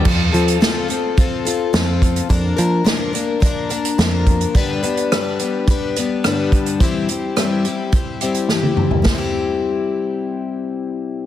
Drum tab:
CC |x---------------|----------------|----------------|----------------|
HH |--xxx-x-x-x-x-xx|x-x-x-x-x-xxx-xx|x-xxx-x-x-x-x-xx|x-x-x-x-x-xx----|
SD |----o-------o---|----o-------o---|----r-------r---|----r-------o---|
T1 |----------------|----------------|----------------|-------------o--|
T2 |----------------|----------------|----------------|--------------o-|
FT |----------------|----------------|----------------|---------------o|
BD |o-------o-----o-|o-------o-----o-|o-------o-----o-|o-------o-------|

CC |----------------|
HH |----------------|
SD |o---------------|
T1 |----------------|
T2 |----------------|
FT |----------------|
BD |o---------------|